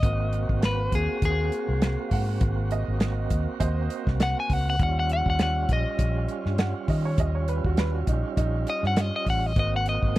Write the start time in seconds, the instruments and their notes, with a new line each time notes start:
Already playing: clean electric guitar D#5
0.03 fingered electric bass G#1, tonewheel organ A#3 C4 F#4, kick, closed hi-hat
0.33 closed hi-hat
0.49 fingered electric bass G#1, kick
0.62 clean electric guitar B4, snare, closed hi-hat
0.92 fingered electric bass D#2, clean electric guitar G#4, kick, closed hi-hat
1.22 fingered electric bass D#2, clean electric guitar G#4, kick, closed hi-hat
1.52 closed hi-hat
1.69 fingered electric bass C2
1.82 snare, closed hi-hat
2.08 fingered electric bass G#2, upright piano F5, kick, open hi-hat
2.13 upright piano F#5
2.41 fingered electric bass G#1, kick, closed hi-hat
2.71 upright piano D#5, closed hi-hat
2.88 fingered electric bass G#1
3.00 snare, closed hi-hat
3.30 fingered electric bass D#2, kick, closed hi-hat
3.60 fingered electric bass D#2, upright piano C5 D#5, kick, closed hi-hat
3.90 closed hi-hat
4.07 fingered electric bass C2, kick, snare
4.20 clean electric guitar F#5, snare, closed hi-hat
4.40 clean electric guitar G#5
4.50 fingered electric bass C#2, clean electric guitar F#5, kick, open hi-hat
4.70 clean electric guitar F#5
4.79 fingered electric bass D#2, tonewheel organ G3 C#4 F4, clean electric guitar F#5, kick, closed hi-hat
4.99 clean electric guitar F#5
5.09 clean electric guitar F#5, closed hi-hat
5.26 fingered electric bass D#2, clean electric guitar F#5, kick
5.39 clean electric guitar F#5, snare, closed hi-hat
5.69 fingered electric bass A#1, kick, closed hi-hat
5.73 clean electric guitar D#5
5.99 fingered electric bass A#1, kick, closed hi-hat
6.29 closed hi-hat
6.46 fingered electric bass G2, snare
6.58 upright piano F#5, snare, closed hi-hat
6.88 fingered electric bass D#3, upright piano D#5, kick, open hi-hat
7.05 upright piano C#5
7.18 fingered electric bass D#2, upright piano D#5, kick, closed hi-hat
7.35 upright piano C#5
7.48 upright piano B4, closed hi-hat
7.64 fingered electric bass D#2, upright piano F#4, kick
7.77 upright piano B4, snare, closed hi-hat
7.95 upright piano F#4
8.07 fingered electric bass A#1, upright piano D#4, kick, closed hi-hat
8.37 fingered electric bass A#1, upright piano D#4, kick, closed hi-hat
8.67 clean electric guitar D#5, closed hi-hat
8.83 fingered electric bass G2, snare
8.87 clean electric guitar F#5
8.96 snare, closed hi-hat
9.01 clean electric guitar D#5
9.16 clean electric guitar D#5
9.26 fingered electric bass A1, clean electric guitar F#5, kick, open hi-hat
9.46 clean electric guitar D#5
9.56 fingered electric bass G#1, tonewheel organ A#3 C4 F#4, clean electric guitar D#5, kick, closed hi-hat
9.76 clean electric guitar F#5
9.86 clean electric guitar D#5, closed hi-hat
10.03 fingered electric bass G#1, kick